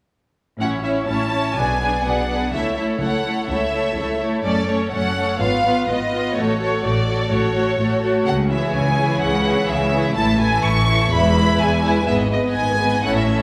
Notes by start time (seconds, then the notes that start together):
0.59 A1 A2 C#4 E4 C#5 F#5
0.84 C#4 E4 C#5 E5
1.08 A1 A2 C#4 E4 C#5 A5
1.33 C#4 E4 C#5
1.56 B1 B2 B3 D4 G#4 D5 G#5
1.81 B3 D4 G#4 D5
2.05 B1 B2 B3 D4 G#4 D5 F#5
2.29 B3 D4 G#4 D5
2.52 C#2 C#3 A3 E4 A4 C#5 E5
2.76 A3 E4 A4 C#5 E5
3.00 C#2 C#3 A3 E4 A4 C#5 F#5
3.26 A3 E4 A4 C#5
3.48 C#2 C#3 A3 E4 A4 C#5 E5
3.73 A3 E4 A4 C#5
3.96 C#2 C#3 A3 E4 A4 C#5
4.19 A3 E4 A4 C#5
4.43 F#1 F#2 A3 C#4 A4 C#5 D5
4.68 A3 C#4 A4 C#5
4.92 F#1 F#2 A3 C#4 A4 C#5 F#5
5.16 A3 C#4 A4 C#5
5.39 G#1 G#2 B3 F4 B4 F5
5.64 B3 F4 B4
5.88 G#1 G#2 B3 F4 B4 D#5
6.12 B3 F4 B4
6.36 A1 A2 A3 F#4 A4 C#5
6.60 A3 F#4 A4 C#5
6.83 A1 A2 A3 F#4 A4 C#5 D5
7.07 A3 F#4 A4 C#5
7.31 A1 A2 A3 F#4 A4 C#5
7.54 A3 F#4 A4 C#5
7.79 A1 A2 A3 F#4 A4 C#5
8.02 A3 F#4 A4 C#5
8.26 C#2 C#3 F#5
8.50 E3 E4 G#4 C#5 E5
8.74 C#2 C#3 G#5
8.98 E3 E4 G#4 C#5
9.21 C#2 C#3 F#5
9.45 E3 E4 G#4 C#5
9.68 C#2 C#3 E5
9.93 E3 E4 G#4 C#5
10.15 A1 A2 E3 E4 A4 E5 A5
10.40 E3 E4 A4 E5 G#5
10.64 A1 A2 C#6
10.89 E3 E4 A4 E5
11.12 E1 E2 G#3 E4 B4 E5 B5
11.36 G#3 E4 B4 E5
11.60 E1 E2 G#5
11.84 G#3 E4 B4 E5
12.07 G#1 G#2 G#3 B3 B4 D#5 E5
12.32 G#3 B3 B4 D#5
12.55 G#1 G#2 G#5
12.80 G#3 B3 B4 D#5
13.04 A1 A2 C#4 E4 A4 C#5 F#5
13.17 E5
13.29 C#4 E4 A4 C#5